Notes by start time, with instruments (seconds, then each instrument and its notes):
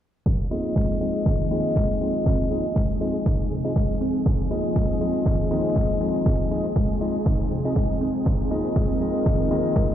0.26 ambient pad F3 C4 D#4 G#4, kalimba F3, kick, shaker
0.41 shaker
0.51 kalimba A#3, tine electric piano C4 D#4 F4 G#4 D#5
0.66 shaker
0.76 kalimba G#3, kick, shaker
0.91 shaker
1.01 kalimba F3, tine electric piano C4 D#4 F4 G#4 D#5
1.16 shaker
1.26 kalimba D#3, kick, shaker
1.40 shaker
1.51 kalimba A#3, tine electric piano C4 D#4 F4 G#4 D#5
1.65 shaker
1.76 kalimba G#3, kick, shaker
1.91 shaker
2.01 kalimba F3, tine electric piano C4 D#4 F4 G#4 D#5
2.16 shaker
2.26 kalimba C4, kick, shaker
2.41 shaker
2.51 kalimba A#3, tine electric piano C4 D#4 F4 G#4 D#5
2.65 shaker
2.76 kalimba G#3, kick, shaker
2.91 shaker
3.01 kalimba F3, tine electric piano C4 D#4 F4 G#4 D#5
3.16 shaker
3.26 kalimba D#4, kick, shaker
3.41 shaker
3.51 kalimba C3
3.65 tine electric piano C4 D#4 F4 G#4 D#5, shaker
3.76 kalimba G#3, kick, shaker
3.91 shaker
4.01 kalimba C4
4.16 shaker
4.26 kalimba F3, kick, shaker
4.40 shaker
4.51 kalimba A#3, tine electric piano C4 D#4 F4 G#4 D#5
4.65 shaker
4.76 kalimba G#3, kick, shaker
4.90 shaker
5.01 kalimba F3, tine electric piano C4 D#4 F4 G#4 D#5
5.15 shaker
5.26 kalimba D#3, kick, shaker
5.40 shaker
5.51 kalimba A#3, tine electric piano C4 D#4 F4 G#4 D#5
5.65 shaker
5.76 kalimba G#3, kick, shaker
5.90 shaker
6.01 kalimba F3, tine electric piano C4 D#4 F4 G#4 D#5
6.15 shaker
6.26 kalimba C4, kick, shaker
6.40 shaker
6.51 kalimba A#3, tine electric piano C4 D#4 F4 G#4 D#5
6.65 shaker
6.76 kalimba G#3, kick, shaker
6.91 shaker
7.01 kalimba F3, tine electric piano C4 D#4 F4 G#4 D#5
7.16 shaker
7.26 kalimba D#4, kick, shaker
7.41 shaker
7.51 kalimba C3
7.65 tine electric piano C4 D#4 F4 G#4 D#5, shaker
7.76 kalimba G#3, kick, shaker
7.91 shaker
8.01 kalimba C4
8.16 shaker
8.26 kalimba F3, ambient pad A#4, kick, shaker
8.41 shaker
8.51 kalimba A#3, tine electric piano C4 D#4 F4 G#4 D#5
8.66 shaker
8.76 kalimba G#3, kick, shaker
8.91 shaker
9.01 kalimba F3, tine electric piano C4 D#4 F4 G#4 D#5
9.16 shaker
9.26 kalimba D#3, kick, shaker
9.41 shaker
9.51 kalimba A#3, tine electric piano C4 D#4 F4 G#4 D#5
9.66 shaker
9.76 kalimba G#3, kick, shaker
9.91 shaker